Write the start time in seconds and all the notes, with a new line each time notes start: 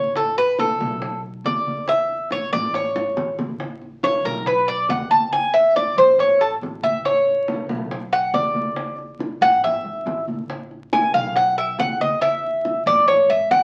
Already playing: A1 C#5
0.16 A4, high bongo, high conga
0.38 B4, high bongo, high conga
0.59 A4, high bongo, high conga
0.80 B1, high bongo, high conga
1.02 high bongo, high conga
1.24 high conga
1.44 E2 D5, high bongo, low bongo, high conga
1.67 high bongo, high conga
1.88 E5, high bongo, high conga
2.09 high bongo, high conga
2.31 C#5, high bongo, high conga
2.53 A1 D5, high bongo, high conga, low conga
2.74 C#5, high bongo, high conga
2.95 G#1, high bongo, high conga
3.17 A1, low bongo, high conga
3.39 low bongo, high conga
3.60 high bongo, high conga
3.82 high bongo, high conga
4.03 C#5, high bongo, high conga
4.25 B1 A#4, high bongo, high conga
4.46 B4, high bongo, high conga
4.68 D5, high conga
4.89 E2 F#5, high bongo, low bongo, high conga
5.11 A5, high bongo, high conga
5.32 G#5, high bongo, high conga
5.54 E5, high bongo, high conga
5.76 D5, high bongo, high conga
5.97 A1 C5, high bongo, high conga, low conga
6.18 C#5, high bongo, high conga, low conga
6.40 A4, high conga
6.61 A1, high bongo, low bongo, high conga
6.82 E5, high bongo, high conga
7.04 C#5, high bongo, high conga
7.26 high bongo, high conga
7.48 high bongo, high conga
7.69 B1, high bongo, high conga
7.91 high bongo, high conga
8.12 F#5, high conga
8.33 E2 D5, high bongo, low bongo, high conga
8.55 high bongo, high conga
8.76 high bongo, high conga
8.98 high bongo, high conga
9.19 high bongo, high conga
9.41 A1 F#5, high conga, low conga
9.64 E5, high bongo, high conga, low conga
9.85 G#1, high conga
10.06 A1, high bongo, low bongo, high conga
10.28 high bongo, high conga
10.50 high bongo, high conga
10.71 high bongo, high conga
10.93 G#5, high bongo, high conga, claves
11.14 B1 F5, high bongo, high conga
11.36 F#5, high bongo, high conga
11.58 E5, high conga, claves
11.78 E2 F#5, high bongo, low bongo, high conga
12.00 D#5, high bongo, high conga
12.21 E5, high bongo, high conga, claves
12.43 high bongo, high conga
12.65 high bongo, high conga
12.86 A1 D5, high bongo, high conga, low conga, claves
13.08 C#5, high bongo, high conga, low conga
13.29 G#1 E5, high conga
13.51 A1 F#5, high bongo, low bongo, high conga, claves